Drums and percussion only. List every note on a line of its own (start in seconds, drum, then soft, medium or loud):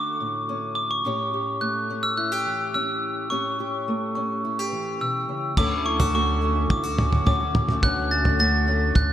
5.57 kick medium
5.57 floor tom medium
5.57 crash medium
6.00 floor tom medium
6.70 kick medium
6.70 floor tom medium
6.99 floor tom medium
6.99 mid tom medium
7.13 floor tom medium
7.27 floor tom medium
7.27 mid tom medium
7.55 floor tom medium
7.55 mid tom medium
7.69 mid tom medium
7.83 kick loud
7.83 floor tom medium
8.25 floor tom medium
8.95 kick medium
8.95 floor tom medium